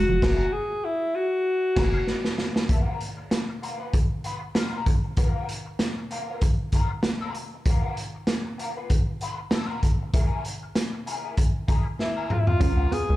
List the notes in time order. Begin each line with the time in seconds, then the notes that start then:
Already playing: F#4
0.09 F1 F3, muted clean electric guitar stroke
0.22 F#1 E4 G#4 A#4, kick, snare, crash
0.53 G#4
0.85 E4
1.15 F#4
1.76 F#1 E4 G#4 A#4, kick, snare, crash
2.07 snare
2.25 snare
2.38 snare
2.56 snare
2.69 A#3 E4 A4, kick, closed hi-hat
2.81 B3 F4 A#4
3.01 closed hi-hat
3.17 muted clean electric guitar stroke
3.31 muted clean electric guitar stroke, snare, closed hi-hat
3.49 muted clean electric guitar stroke
3.62 B3 F4 A#4, closed hi-hat
3.79 B3 F4 B4
3.93 muted clean electric guitar stroke, kick, closed hi-hat
4.24 B3 F4 B4, closed hi-hat
4.41 muted clean electric guitar stroke
4.55 B3 F4 A#4, snare, closed hi-hat
4.86 muted clean electric guitar stroke, kick, closed hi-hat
5.04 muted clean electric guitar stroke
5.17 B3 F4 A#4, kick, closed hi-hat
5.49 closed hi-hat
5.66 muted clean electric guitar stroke
5.79 muted clean electric guitar stroke, snare, closed hi-hat
5.98 muted clean electric guitar stroke
6.11 B3 F4 A#4, closed hi-hat
6.29 B3 F4 A#4
6.41 muted clean electric guitar stroke, kick, closed hi-hat
6.72 B3 F4 A#4, kick, closed hi-hat
6.91 muted clean electric guitar stroke
7.03 muted clean electric guitar stroke, snare, closed hi-hat
7.21 B3 F4 A#4
7.35 muted clean electric guitar stroke, closed hi-hat
7.54 muted clean electric guitar stroke
7.66 B3 F4, kick, closed hi-hat
7.70 A#4
7.97 closed hi-hat
8.15 muted clean electric guitar stroke
8.27 muted clean electric guitar stroke, snare, closed hi-hat
8.46 muted clean electric guitar stroke
8.58 B3 F4 A#4, closed hi-hat
8.76 B3 F4 B4
8.90 muted clean electric guitar stroke, kick, closed hi-hat
9.21 B3 F4 B4, closed hi-hat
9.39 muted clean electric guitar stroke
9.51 A#3 E4 A4, snare, closed hi-hat
9.65 B3 F4 A#4
9.83 muted clean electric guitar stroke, kick, closed hi-hat
10.02 muted clean electric guitar stroke
10.14 E4 G#4 A#4, kick, closed hi-hat
10.45 closed hi-hat
10.63 muted clean electric guitar stroke
10.75 muted clean electric guitar stroke, snare, closed hi-hat
10.93 muted clean electric guitar stroke
11.06 E4 G#4 A#4, closed hi-hat
11.23 E4 G#4 A#4
11.37 muted clean electric guitar stroke, kick, closed hi-hat
11.68 E4 G#4 A#4, kick, closed hi-hat
11.86 muted clean electric guitar stroke
11.99 E4, muted clean electric guitar stroke, snare
12.17 E4 G#4 A#4
12.30 F4, muted clean electric guitar stroke, mid tom
12.39 E4
12.47 F4, muted clean electric guitar stroke, floor tom
12.60 C#2 B3 C#4 F4 A#4, kick, closed hi-hat
12.78 muted clean electric guitar stroke
12.91 B3 G#4, closed hi-hat
13.08 C#2, muted clean electric guitar stroke